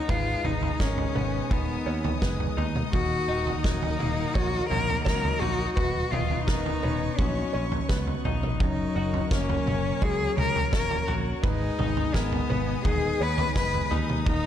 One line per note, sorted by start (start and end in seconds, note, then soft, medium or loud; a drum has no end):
0.00 0.11 D#4 medium
0.08 0.34 G#1 medium
0.08 1.86 G#2 medium
0.08 2.90 B3 medium
0.08 0.47 F4 medium
0.08 0.80 B4 medium
0.08 8.56 D#5 medium
0.08 2.90 G#5 medium
0.08 5.72 D#6 medium
0.08 kick medium
0.08 floor tom medium
0.44 0.69 G#1 medium
0.44 2.57 D#4 medium
0.44 0.83 D#4 medium
0.44 floor tom medium
0.44 mid tom medium
0.62 floor tom medium
0.79 1.05 G#1 medium
0.79 2.21 G#3 medium
0.79 1.53 C#4 medium
0.79 1.15 A#4 medium
0.79 kick medium
0.79 snare medium
0.98 floor tom medium
1.15 1.41 G#1 medium
1.15 1.85 B3 medium
1.15 1.87 B4 medium
1.15 mid tom medium
1.51 1.76 D#1 medium
1.51 2.93 D#3 medium
1.51 2.23 B3 medium
1.51 kick medium
1.51 floor tom medium
1.86 2.11 D#2 medium
1.86 2.93 B3 medium
1.86 2.22 C#5 medium
2.04 floor tom medium
2.22 2.47 F#1 medium
2.22 2.93 G#3 medium
2.22 2.93 B4 medium
2.22 kick loud
2.22 snare medium
2.40 floor tom medium
2.57 2.82 D#2 medium
2.57 3.28 D#4 medium
2.57 floor tom medium
2.76 mid tom medium
2.92 3.18 D#1 medium
2.92 4.70 D#2 medium
2.92 3.60 F#4 medium
2.92 5.74 A#4 medium
2.92 5.75 F#5 medium
2.92 kick loud
2.92 floor tom medium
3.28 3.53 D#1 medium
3.28 5.06 D#4 medium
3.28 3.99 D#5 medium
3.47 floor tom medium
3.62 3.89 D#1 medium
3.62 5.06 F#3 medium
3.62 4.35 D#4 medium
3.62 kick medium
3.62 snare medium
3.82 floor tom medium
3.99 4.24 D#1 medium
3.99 4.69 A#3 medium
3.99 mid tom medium
4.34 4.60 A#1 medium
4.34 5.77 D#3 medium
4.34 4.68 F#4 medium
4.34 5.04 C#5 medium
4.34 kick loud
4.34 floor tom medium
4.69 4.95 A#1 medium
4.69 5.77 A#3 medium
4.69 5.03 A#4 medium
4.69 floor tom medium
4.69 mid tom medium
4.89 floor tom medium
5.04 5.31 C#2 medium
5.04 6.48 F#3 medium
5.04 5.41 A#4 medium
5.04 5.77 C#5 medium
5.04 kick medium
5.04 snare medium
5.25 floor tom medium
5.39 5.66 A#1 medium
5.39 5.77 D#4 medium
5.39 5.74 F#4 medium
5.39 floor tom medium
5.75 6.02 D#1 medium
5.75 7.55 B2 medium
5.75 8.58 B3 medium
5.75 6.12 F#4 medium
5.75 6.47 B4 medium
5.75 8.58 C#6 medium
5.75 kick medium
5.75 floor tom medium
6.11 6.37 D#1 medium
6.11 7.90 D#4 medium
6.11 6.45 F4 medium
6.11 floor tom medium
6.11 mid tom medium
6.31 floor tom medium
6.46 6.73 D#1 medium
6.46 7.88 B3 medium
6.46 7.19 D#4 medium
6.46 6.83 A#4 medium
6.46 kick medium
6.46 snare medium
6.66 floor tom medium
6.83 7.08 D#1 medium
6.83 7.53 C#4 medium
6.83 7.54 B4 medium
6.83 mid tom medium
7.18 7.44 A#1 medium
7.18 8.60 F#3 medium
7.18 7.89 C#4 medium
7.18 kick loud
7.18 floor tom medium
7.53 7.79 A#1 medium
7.53 8.60 C#4 medium
7.53 7.89 C#5 medium
7.72 floor tom medium
7.89 8.14 C#2 medium
7.89 8.60 B3 medium
7.89 8.60 B4 medium
7.89 kick medium
7.89 snare medium
8.07 floor tom medium
8.25 8.61 A#1 medium
8.25 8.60 D#4 medium
8.25 floor tom medium
8.43 mid tom medium
8.60 8.85 F#1 medium
8.60 10.38 F#2 medium
8.60 9.27 D#4 medium
8.60 11.41 A#4 medium
8.60 11.41 C#5 medium
8.60 11.41 C#6 medium
8.60 kick loud
8.60 floor tom medium
8.95 9.21 F#1 medium
8.95 10.73 F#4 medium
8.95 9.66 D#5 medium
9.14 floor tom medium
9.31 9.56 F#1 medium
9.31 10.71 A#3 medium
9.31 10.04 C#4 medium
9.31 kick loud
9.31 snare medium
9.49 floor tom medium
9.66 9.91 F#1 medium
9.66 10.36 C#4 medium
9.66 mid tom medium
10.02 10.27 C#2 medium
10.02 11.43 F#3 medium
10.02 10.38 G#4 loud
10.02 10.71 C#5 medium
10.02 kick medium
10.02 floor tom medium
10.37 10.62 C#2 medium
10.37 11.43 C#4 medium
10.37 10.71 A#4 medium
10.37 floor tom medium
10.37 mid tom medium
10.56 floor tom medium
10.72 10.98 D#1 medium
10.72 11.43 A#3 medium
10.72 11.06 A#4 medium
10.72 11.44 C#5 medium
10.72 kick loud
10.72 snare medium
10.91 floor tom medium
11.08 11.33 A#1 medium
11.08 11.43 F#4 medium
11.08 floor tom medium
11.43 11.68 G#1 medium
11.43 13.20 G#2 medium
11.43 14.23 B3 medium
11.43 12.16 D#4 medium
11.43 12.14 B4 medium
11.43 14.23 D#5 medium
11.43 14.23 G#5 medium
11.43 14.46 D#6 medium
11.43 kick loud
11.43 floor tom medium
11.79 12.04 G#1 medium
11.79 13.90 D#4 medium
11.79 floor tom medium
11.79 mid tom medium
11.97 floor tom medium
12.14 12.39 G#1 medium
12.14 13.54 G#3 medium
12.14 12.85 B3 medium
12.14 12.50 A#4 medium
12.14 kick medium
12.14 snare medium
12.32 floor tom medium
12.50 12.75 G#1 medium
12.50 13.20 B3 medium
12.50 13.20 B4 medium
12.50 mid tom medium
12.85 13.10 D#1 medium
12.85 14.26 D#3 medium
12.85 13.23 G#4 medium
12.85 kick medium
12.85 floor tom medium
13.20 13.45 D#2 medium
13.20 14.27 B3 medium
13.20 13.56 B4 medium
13.20 13.56 C#5 medium
13.38 floor tom medium
13.56 13.80 F#1 medium
13.56 14.26 G#3 medium
13.56 14.26 B4 medium
13.56 13.89 B4 medium
13.56 kick loud
13.56 snare medium
13.74 floor tom medium
13.91 14.28 D#2 medium
13.91 14.46 D#4 medium
13.91 floor tom medium
14.09 mid tom medium
14.26 14.46 D#1 medium
14.26 14.46 D#2 medium
14.26 14.46 D#4 loud
14.26 14.46 A#4 medium
14.26 14.46 D#5 medium
14.26 14.46 A#5 medium
14.26 kick loud
14.26 floor tom medium